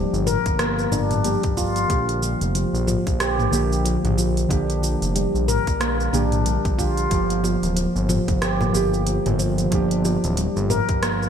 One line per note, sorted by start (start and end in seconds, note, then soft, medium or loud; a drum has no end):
0.00 1.23 F3 loud
0.00 0.25 G3 medium
0.00 1.25 A#3 medium
0.00 1.25 G4 loud
0.13 0.37 G1 medium
0.13 cabasa soft
0.27 0.45 A#4 loud
0.27 mid tom medium
0.27 cabasa medium
0.46 0.87 G1 medium
0.46 kick loud
0.46 closed hi-hat soft
0.46 cabasa soft
0.59 0.70 A#3 medium
0.59 cross-stick medium
0.59 closed hi-hat medium
0.59 cabasa soft
0.79 cabasa soft
0.91 1.37 G1 medium
0.91 1.10 D4 loud
0.91 mid tom medium
0.91 cabasa medium
1.11 closed hi-hat soft
1.11 mid tom medium
1.11 cabasa soft
1.23 1.86 F3 medium
1.23 1.56 G3 medium
1.23 1.86 A#3 medium
1.23 1.87 G4 medium
1.23 closed hi-hat medium
1.23 cabasa soft
1.43 1.85 G1 loud
1.43 kick loud
1.43 closed hi-hat soft
1.43 cabasa soft
1.57 1.75 F4 loud
1.57 kick medium
1.57 cabasa medium
1.76 closed hi-hat soft
1.76 cabasa soft
1.88 2.35 A#1 loud
1.88 3.48 D3 medium
1.88 2.21 F3 medium
1.88 3.49 A#3 medium
1.88 kick loud
1.88 closed hi-hat medium
1.88 cabasa soft
1.92 3.50 G4 medium
2.09 closed hi-hat soft
2.09 cabasa soft
2.22 2.33 F3 medium
2.22 cabasa medium
2.41 2.65 F1 loud
2.41 closed hi-hat soft
2.41 cabasa soft
2.55 2.86 F3 medium
2.55 closed hi-hat medium
2.55 cabasa soft
2.73 2.98 A#1 loud
2.73 cabasa soft
2.87 3.06 F3 loud
2.87 mid tom medium
2.87 cabasa medium
3.07 3.48 A#1 loud
3.07 kick loud
3.07 closed hi-hat soft
3.07 cabasa soft
3.20 3.37 G4 medium
3.20 cross-stick medium
3.20 closed hi-hat medium
3.20 cabasa soft
3.39 3.47 A#3 medium
3.39 mid tom medium
3.39 cabasa soft
3.50 3.97 A#1 loud
3.50 4.46 D3 medium
3.50 3.63 F3 medium
3.50 4.47 A#3 medium
3.50 cabasa medium
3.54 4.48 G4 loud
3.73 cabasa soft
3.85 4.16 F3 medium
3.85 closed hi-hat medium
3.85 cabasa soft
4.04 4.46 A#1 medium
4.04 closed hi-hat soft
4.04 mid tom medium
4.04 cabasa soft
4.18 4.36 F3 medium
4.18 cabasa medium
4.37 closed hi-hat soft
4.37 cabasa soft
4.48 4.95 A#1 loud
4.48 6.10 D3 loud
4.48 6.11 A#3 medium
4.48 4.82 D4 medium
4.48 6.12 G4 loud
4.48 kick loud
4.48 closed hi-hat medium
4.48 cabasa soft
4.70 closed hi-hat soft
4.70 cabasa soft
4.83 5.01 F3 medium
4.83 cabasa medium
5.02 5.26 F1 loud
5.02 closed hi-hat soft
5.02 cabasa soft
5.15 5.47 G3 medium
5.15 closed hi-hat medium
5.15 cabasa soft
5.34 5.59 A#1 medium
5.34 cabasa soft
5.48 5.66 A#4 loud
5.48 mid tom medium
5.48 cabasa medium
5.67 6.09 A#1 loud
5.67 kick loud
5.67 closed hi-hat soft
5.67 cabasa soft
5.80 5.92 A#3 medium
5.80 cross-stick medium
5.80 closed hi-hat medium
5.80 cabasa soft
6.00 cabasa soft
6.13 6.58 A#1 loud
6.13 6.75 D3 medium
6.13 6.76 A#3 medium
6.13 6.31 D4 medium
6.13 6.76 G4 medium
6.13 mid tom medium
6.13 cabasa medium
6.32 closed hi-hat soft
6.32 mid tom medium
6.32 cabasa soft
6.46 6.77 G3 medium
6.46 closed hi-hat medium
6.46 cabasa soft
6.65 7.06 A#1 loud
6.65 kick loud
6.65 closed hi-hat soft
6.65 cabasa soft
6.78 7.08 D3 medium
6.78 7.08 A#3 medium
6.78 6.97 F4 loud
6.78 7.09 G4 medium
6.78 kick medium
6.78 cabasa medium
6.97 closed hi-hat soft
6.97 cabasa soft
7.10 7.56 G1 loud
7.10 8.70 F3 medium
7.10 7.42 F3 medium
7.10 8.71 A#3 medium
7.10 kick loud
7.10 closed hi-hat medium
7.10 cabasa soft
7.14 8.72 G4 medium
7.30 closed hi-hat soft
7.30 cabasa soft
7.44 7.55 F3 medium
7.44 high bongo medium
7.44 cabasa medium
7.63 7.87 D1 medium
7.63 closed hi-hat soft
7.63 high conga medium
7.63 cabasa soft
7.76 8.08 F3 medium
7.76 closed hi-hat medium
7.76 cabasa soft
7.95 8.20 G1 loud
7.95 cabasa soft
8.09 8.27 F3 loud
8.09 mid tom medium
8.09 high bongo medium
8.09 cabasa medium
8.28 8.69 G1 loud
8.28 kick loud
8.28 closed hi-hat soft
8.28 low conga medium
8.28 cabasa soft
8.42 8.59 G4 medium
8.42 cross-stick medium
8.42 closed hi-hat medium
8.42 cabasa soft
8.61 8.69 A#3 medium
8.61 mid tom medium
8.61 high bongo medium
8.61 cabasa soft
8.72 9.19 G1 medium
8.72 9.68 F3 medium
8.72 8.85 F3 medium
8.72 9.69 A#3 medium
8.72 high conga soft
8.72 cabasa medium
8.76 9.70 G4 medium
8.94 cabasa soft
9.07 9.38 F3 medium
9.07 closed hi-hat medium
9.07 cabasa soft
9.26 9.67 G1 loud
9.26 closed hi-hat soft
9.26 mid tom medium
9.26 high bongo medium
9.26 cabasa soft
9.39 9.58 F3 loud
9.39 cabasa medium
9.58 closed hi-hat soft
9.58 high bongo soft
9.58 high conga medium
9.58 cabasa soft
9.71 10.17 G1 loud
9.71 11.29 F3 loud
9.71 11.29 A#3 medium
9.71 10.04 D4 medium
9.71 11.29 G4 loud
9.71 kick loud
9.71 closed hi-hat medium
9.71 cabasa soft
9.91 closed hi-hat soft
9.91 cabasa soft
10.05 10.23 F3 medium
10.05 high bongo medium
10.05 cabasa medium
10.24 10.48 D1 loud
10.24 closed hi-hat soft
10.24 high conga medium
10.24 cabasa soft
10.37 10.69 G3 medium
10.37 closed hi-hat medium
10.37 cabasa soft
10.56 10.81 G1 loud
10.56 cabasa soft
10.70 10.88 A#4 loud
10.70 mid tom medium
10.70 high bongo medium
10.70 cabasa medium
10.89 11.29 G1 loud
10.89 kick loud
10.89 closed hi-hat soft
10.89 cabasa soft
11.03 11.14 A#3 medium
11.03 cross-stick medium
11.03 closed hi-hat medium
11.03 cabasa soft
11.23 cabasa soft